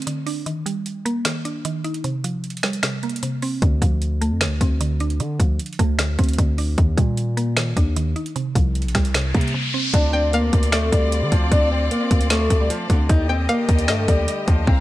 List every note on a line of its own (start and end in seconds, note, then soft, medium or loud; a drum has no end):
0.00 0.46 A3 loud
0.00 0.46 C4 medium
0.00 closed hi-hat medium
0.00 downlifter medium
0.07 0.46 D3 medium
0.07 closed hi-hat loud
0.26 0.46 D4 medium
0.26 open hi-hat medium
0.46 1.24 D#3 medium
0.46 closed hi-hat medium
0.66 1.65 G3 medium
0.66 closed hi-hat medium
0.86 closed hi-hat medium
1.05 2.04 A#3 loud
1.05 closed hi-hat medium
1.25 1.64 D#3 medium
1.25 finger snap medium
1.25 snare loud
1.25 closed hi-hat medium
1.45 2.04 D4 medium
1.45 closed hi-hat medium
1.65 2.04 D#3 medium
1.65 closed hi-hat medium
1.84 2.04 D#4 medium
1.84 closed hi-hat medium
1.94 closed hi-hat medium
2.04 2.82 C3 medium
2.04 closed hi-hat medium
2.24 3.23 F3 medium
2.24 closed hi-hat medium
2.44 closed hi-hat medium
2.50 closed hi-hat medium
2.57 closed hi-hat medium
2.63 3.62 G3 loud
2.63 finger snap medium
2.63 snare medium
2.63 closed hi-hat medium
2.73 closed hi-hat medium
2.83 3.22 C3 medium
2.83 finger snap medium
2.83 snare loud
2.83 closed hi-hat medium
3.03 3.62 A#3 medium
3.03 closed hi-hat soft
3.09 closed hi-hat medium
3.16 closed hi-hat medium
3.23 3.62 C3 medium
3.23 closed hi-hat medium
3.42 3.62 C4 medium
3.42 open hi-hat medium
3.62 3.81 D2 loud
3.62 4.40 D3 medium
3.62 kick loud
3.62 closed hi-hat medium
3.82 4.33 D2 loud
3.82 4.81 F3 medium
3.82 kick loud
3.82 closed hi-hat medium
4.02 closed hi-hat medium
4.21 5.20 A3 loud
4.21 closed hi-hat medium
4.31 4.47 F2 loud
4.41 4.79 D3 medium
4.41 finger snap medium
4.41 snare loud
4.41 closed hi-hat medium
4.46 4.60 D2 loud
4.61 5.21 D2 loud
4.61 5.60 C4 medium
4.61 kick medium
4.61 closed hi-hat medium
4.81 5.19 D3 loud
4.81 closed hi-hat medium
5.00 5.99 D4 medium
5.00 closed hi-hat medium
5.10 closed hi-hat medium
5.20 5.39 D3 loud
5.20 5.98 D3 medium
5.20 closed hi-hat medium
5.40 5.59 D2 loud
5.40 6.38 F3 medium
5.40 kick loud
5.40 closed hi-hat medium
5.59 closed hi-hat medium
5.66 closed hi-hat medium
5.73 closed hi-hat soft
5.79 6.17 D2 loud
5.79 6.78 A3 loud
5.79 kick loud
5.79 closed hi-hat medium
5.99 6.37 D3 medium
5.99 finger snap medium
5.99 snare loud
5.99 closed hi-hat medium
6.19 6.38 D2 loud
6.19 6.78 C4 medium
6.19 kick medium
6.19 closed hi-hat medium
6.24 closed hi-hat medium
6.29 closed hi-hat medium
6.33 closed hi-hat medium
6.38 6.76 D2 loud
6.38 6.78 D3 medium
6.38 kick loud
6.38 closed hi-hat medium
6.58 6.78 D4 medium
6.58 open hi-hat medium
6.78 6.97 D#2 loud
6.78 7.56 D#3 medium
6.78 kick loud
6.78 closed hi-hat medium
6.97 7.73 A#2 loud
6.97 7.96 G3 medium
6.97 kick loud
6.97 closed hi-hat medium
7.17 closed hi-hat medium
7.37 8.36 A#3 loud
7.37 closed hi-hat medium
7.57 7.95 D#3 medium
7.57 finger snap medium
7.57 snare loud
7.57 closed hi-hat medium
7.77 8.15 D#2 loud
7.77 8.36 D4 medium
7.77 kick medium
7.77 closed hi-hat medium
7.96 8.36 D#3 medium
7.96 closed hi-hat medium
8.16 8.36 D#4 medium
8.16 closed hi-hat medium
8.26 closed hi-hat medium
8.36 9.14 C3 medium
8.36 closed hi-hat medium
8.36 riser medium
8.55 8.87 C2 loud
8.55 9.54 F3 medium
8.55 kick loud
8.55 closed hi-hat medium
8.75 closed hi-hat medium
8.82 8.95 A#1 loud
8.82 closed hi-hat medium
8.88 closed hi-hat medium
8.95 9.33 C2 loud
8.95 9.94 G3 loud
8.95 finger snap medium
8.95 kick medium
8.95 snare medium
8.95 closed hi-hat medium
9.05 closed hi-hat medium
9.14 9.53 C3 medium
9.14 finger snap medium
9.14 snare loud
9.14 closed hi-hat medium
9.34 9.53 C3 loud
9.34 9.94 A#3 medium
9.34 kick medium
9.34 closed hi-hat soft
9.41 closed hi-hat medium
9.48 closed hi-hat medium
9.54 9.94 C3 medium
9.74 9.94 C4 medium
9.94 10.51 D2 loud
9.94 13.06 C4 medium
9.94 10.11 D4 medium
9.94 13.06 F4 medium
9.94 13.06 D5 medium
9.94 kick loud
9.94 closed hi-hat medium
10.13 10.30 C4 medium
10.13 10.32 G5 medium
10.33 10.70 A#3 medium
10.33 10.71 F5 medium
10.33 closed hi-hat medium
10.53 10.91 D2 loud
10.53 kick loud
10.53 closed hi-hat medium
10.63 closed hi-hat medium
10.72 10.90 A3 medium
10.72 11.47 D5 medium
10.72 finger snap medium
10.72 snare loud
10.72 closed hi-hat medium
10.92 11.24 D2 loud
10.92 11.30 G3 medium
10.92 kick medium
10.92 closed hi-hat medium
11.12 closed hi-hat medium
11.22 11.31 D3 loud
11.32 11.51 D2 loud
11.32 11.49 F3 medium
11.32 kick loud
11.32 closed hi-hat medium
11.52 11.89 D2 loud
11.52 11.68 D4 medium
11.52 kick loud
11.52 closed hi-hat medium
11.71 11.88 C4 medium
11.91 12.28 A#3 medium
11.91 closed hi-hat medium
12.11 12.49 D2 loud
12.11 kick loud
12.11 closed hi-hat medium
12.21 closed hi-hat medium
12.30 12.58 A3 medium
12.30 finger snap medium
12.30 snare loud
12.30 closed hi-hat medium
12.50 12.69 D2 loud
12.50 kick medium
12.50 closed hi-hat medium
12.60 12.69 G3 medium
12.70 12.87 F3 medium
12.70 closed hi-hat loud
12.90 13.09 D2 loud
12.90 13.07 D3 medium
12.90 kick loud
12.90 closed hi-hat medium
13.09 13.47 D#2 loud
13.09 14.66 D3 medium
13.09 13.26 D#4 loud
13.09 14.66 G4 medium
13.09 14.66 D#5 medium
13.09 kick loud
13.09 closed hi-hat medium
13.29 13.46 C4 medium
13.29 13.48 G5 medium
13.49 13.86 A#3 medium
13.49 13.86 F5 medium
13.49 closed hi-hat medium
13.69 13.90 D#2 loud
13.69 kick loud
13.69 closed hi-hat medium
13.79 closed hi-hat medium
13.88 14.07 G2 loud
13.88 14.05 A3 loud
13.88 14.63 D#5 medium
13.88 finger snap medium
13.88 snare loud
13.88 closed hi-hat medium
14.08 14.27 D#2 loud
14.08 14.45 G3 medium
14.08 kick medium
14.08 closed hi-hat medium
14.28 closed hi-hat medium
14.48 14.67 D#2 loud
14.48 14.64 F3 medium
14.48 kick loud
14.48 closed hi-hat medium
14.67 14.80 C2 loud
14.67 14.80 C4 medium
14.67 14.80 F5 medium
14.67 14.80 A#5 medium
14.67 kick loud